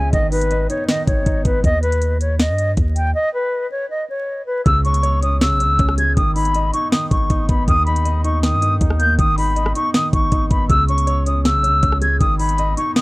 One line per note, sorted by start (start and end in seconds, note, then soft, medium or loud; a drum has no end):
0.00 0.12 C#2 loud
0.00 0.15 C#3 medium
0.00 0.13 G#3 medium
0.00 0.15 C#4 medium
0.00 0.15 C#5 loud
0.00 0.12 G#5 medium
0.12 0.67 G#1 loud
0.12 0.87 D#3 medium
0.12 0.30 D#5 loud
0.12 kick loud
0.12 closed hi-hat medium
0.32 0.68 D#4 medium
0.32 0.67 B4 medium
0.32 closed hi-hat soft
0.32 open hi-hat medium
0.41 closed hi-hat medium
0.51 1.46 D#5 medium
0.51 closed hi-hat medium
0.70 1.05 D#4 medium
0.70 0.87 C#5 medium
0.70 closed hi-hat medium
0.88 1.64 D#3 medium
0.88 1.06 D#5 medium
0.88 snare loud
0.88 closed hi-hat medium
1.07 1.26 G#1 loud
1.07 1.25 D#4 medium
1.07 1.43 C#5 medium
1.07 kick loud
1.07 closed hi-hat medium
1.26 1.44 G#1 loud
1.26 1.64 D#4 medium
1.26 kick medium
1.26 closed hi-hat medium
1.45 1.63 G#1 loud
1.45 1.64 B3 medium
1.45 1.63 B4 medium
1.45 kick loud
1.45 closed hi-hat medium
1.64 2.50 D#2 loud
1.64 1.81 D#5 loud
1.64 kick loud
1.64 closed hi-hat medium
1.82 2.18 B4 medium
1.82 closed hi-hat soft
1.92 closed hi-hat medium
2.02 closed hi-hat medium
2.21 2.38 C#5 medium
2.21 closed hi-hat medium
2.39 2.71 D#5 medium
2.39 snare loud
2.39 closed hi-hat medium
2.49 2.76 G2 loud
2.58 closed hi-hat medium
2.77 3.13 D#2 loud
2.77 kick medium
2.77 closed hi-hat medium
2.96 3.13 G5 medium
2.96 closed hi-hat medium
3.15 3.32 D#5 loud
3.34 3.69 B4 medium
3.71 3.89 C#5 medium
3.90 4.08 D#5 medium
4.10 4.45 C#5 medium
4.46 4.64 B4 medium
4.66 5.52 C#2 loud
4.66 5.40 C#3 medium
4.66 4.83 E6 loud
4.66 kick loud
4.66 closed hi-hat medium
4.85 5.21 C#4 medium
4.85 5.20 C#6 medium
4.85 closed hi-hat soft
4.94 closed hi-hat medium
5.03 5.98 C#5 loud
5.03 closed hi-hat medium
5.23 5.58 C#4 medium
5.23 5.40 D#6 medium
5.23 closed hi-hat medium
5.41 6.17 C#3 medium
5.41 5.94 E6 medium
5.41 snare loud
5.41 closed hi-hat medium
5.51 5.66 B1 loud
5.59 5.77 C#4 medium
5.59 closed hi-hat medium
5.65 5.78 C#2 loud
5.79 6.15 C#2 loud
5.79 6.17 C#4 medium
5.79 kick medium
5.79 closed hi-hat medium
5.89 cross-stick medium
5.98 6.17 G#3 medium
5.98 6.16 G#6 medium
5.98 closed hi-hat medium
6.16 6.71 G#1 loud
6.16 6.91 D#3 medium
6.16 6.34 D#6 loud
6.16 kick loud
6.16 closed hi-hat medium
6.35 6.72 D#4 medium
6.35 6.71 B5 medium
6.35 closed hi-hat soft
6.35 open hi-hat medium
6.45 closed hi-hat medium
6.54 7.49 D#5 loud
6.54 closed hi-hat medium
6.73 7.09 D#4 medium
6.73 6.91 C#6 medium
6.73 closed hi-hat medium
6.92 7.66 D#3 medium
6.92 7.10 D#6 medium
6.92 snare loud
6.92 closed hi-hat medium
7.11 7.29 G#1 loud
7.11 7.28 D#4 medium
7.11 7.47 C#6 medium
7.11 kick loud
7.11 closed hi-hat medium
7.30 7.48 G#1 loud
7.30 7.68 D#4 loud
7.30 kick medium
7.30 closed hi-hat medium
7.49 7.67 G#1 loud
7.49 7.68 B3 medium
7.49 7.66 B5 medium
7.49 kick loud
7.49 closed hi-hat medium
7.68 8.54 D#2 loud
7.68 8.42 D#3 loud
7.68 7.85 D#6 loud
7.68 kick loud
7.68 closed hi-hat medium
7.86 8.23 D#4 medium
7.86 8.22 B5 medium
7.86 closed hi-hat soft
7.96 closed hi-hat medium
8.05 9.00 D#5 medium
8.05 closed hi-hat medium
8.24 8.61 D#4 medium
8.24 8.42 C#6 medium
8.24 closed hi-hat medium
8.43 9.17 D#3 medium
8.43 8.75 D#6 medium
8.43 snare loud
8.43 closed hi-hat medium
8.53 8.80 G2 loud
8.62 8.80 D#4 medium
8.62 closed hi-hat medium
8.81 9.17 D#2 loud
8.81 9.19 D#4 medium
8.81 kick medium
8.81 closed hi-hat medium
8.90 cross-stick medium
9.00 9.19 A#3 medium
9.00 9.17 G6 medium
9.00 closed hi-hat medium
9.18 9.73 G#1 loud
9.18 9.93 D#3 loud
9.18 9.36 D#6 loud
9.18 kick loud
9.18 closed hi-hat medium
9.38 9.74 D#4 medium
9.38 9.73 B5 medium
9.38 open hi-hat medium
9.56 10.51 D#5 medium
9.56 closed hi-hat medium
9.66 cross-stick medium
9.75 10.12 D#4 medium
9.75 9.93 C#6 medium
9.75 closed hi-hat medium
9.94 10.70 D#3 medium
9.94 10.11 D#6 medium
9.94 snare loud
9.94 closed hi-hat medium
10.13 10.31 G#1 loud
10.13 10.31 D#4 medium
10.13 10.49 C#6 medium
10.13 kick loud
10.13 closed hi-hat medium
10.32 10.50 G#1 loud
10.32 10.70 D#4 loud
10.32 kick loud
10.32 closed hi-hat medium
10.50 10.69 G#1 loud
10.50 10.70 B3 medium
10.50 10.68 B5 medium
10.50 kick loud
10.50 closed hi-hat medium
10.69 11.56 C#2 loud
10.69 11.44 C#3 loud
10.69 10.87 E6 loud
10.69 kick loud
10.69 closed hi-hat medium
10.89 11.25 C#4 medium
10.89 11.24 C#6 medium
10.89 closed hi-hat soft
10.98 closed hi-hat medium
11.07 12.01 C#5 loud
11.07 closed hi-hat medium
11.26 11.61 C#4 medium
11.26 11.44 D#6 medium
11.26 closed hi-hat medium
11.45 12.21 C#3 medium
11.45 11.98 E6 medium
11.45 snare loud
11.45 closed hi-hat medium
11.55 11.70 B1 loud
11.63 11.81 C#4 medium
11.63 closed hi-hat medium
11.69 11.82 C#2 loud
11.83 12.19 C#2 loud
11.83 12.20 C#4 medium
11.83 kick medium
11.83 closed hi-hat medium
11.92 cross-stick medium
12.01 12.20 G#3 medium
12.01 12.19 G#6 medium
12.01 closed hi-hat medium
12.20 12.75 G#1 loud
12.20 12.95 D#3 medium
12.20 12.38 D#6 loud
12.20 kick loud
12.20 closed hi-hat medium
12.39 12.76 D#4 medium
12.39 12.75 B5 medium
12.39 closed hi-hat soft
12.39 open hi-hat medium
12.49 closed hi-hat medium
12.58 13.02 D#5 loud
12.58 closed hi-hat medium
12.77 13.02 D#4 medium
12.77 12.94 C#6 medium
12.77 closed hi-hat medium
12.96 13.02 D#3 medium
12.96 13.02 D#6 medium
12.96 snare loud
12.96 closed hi-hat medium